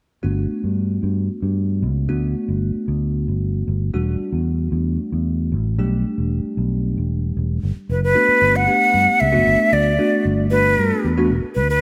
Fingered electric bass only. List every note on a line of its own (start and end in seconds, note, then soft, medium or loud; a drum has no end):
0.24 0.49 G1 medium
0.50 muted fingered electric bass stroke soft
0.64 1.01 G2 medium
1.03 1.28 G2 medium
1.42 1.84 G2 medium
1.83 2.07 C#2 medium
2.09 2.33 D2 medium
2.48 2.73 G1 medium
2.75 muted fingered electric bass stroke soft
2.88 3.25 D2 medium
3.28 3.65 G1 medium
3.68 3.92 G1 medium
3.94 4.19 E1 medium
4.20 muted fingered electric bass stroke soft
4.33 4.70 E2 medium
4.72 4.97 E2 medium
5.12 5.53 E2 medium
5.52 5.77 A1 medium
5.78 6.03 B1 medium
6.18 6.43 E1 medium
6.44 muted fingered electric bass stroke soft
6.57 6.94 B1 medium
6.97 7.34 E1 medium
7.37 7.61 E1 medium
7.63 7.75 G1 medium
7.89 8.14 F#1 medium
8.28 muted fingered electric bass stroke soft
8.42 8.66 G1 medium
8.94 9.06 G2 medium
9.08 muted fingered electric bass stroke soft
9.22 9.36 C#2 medium
9.34 9.46 G1 medium
9.47 9.59 G1 medium
9.73 9.97 D2 medium
10.25 10.75 G1 medium
10.78 10.91 G2 medium
11.04 11.29 E2 medium
11.31 11.43 E1 medium
11.44 muted fingered electric bass stroke soft
11.56 11.81 D2 medium